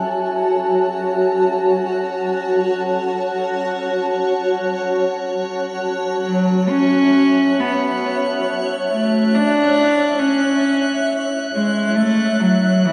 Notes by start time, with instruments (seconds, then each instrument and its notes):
Already playing: ambient pad F#4 C#5 E5 G#5 A5, synth texture F#6
1.12 ambient pad F#5
5.83 synth texture F#6
6.26 cello F#3
6.41 ambient pad E5
6.69 cello C#4
7.60 cello B3
8.92 cello A3
9.34 cello D4
10.19 cello C#4
11.53 cello G#3
11.95 cello A3
12.40 cello F#3
12.86 cello E3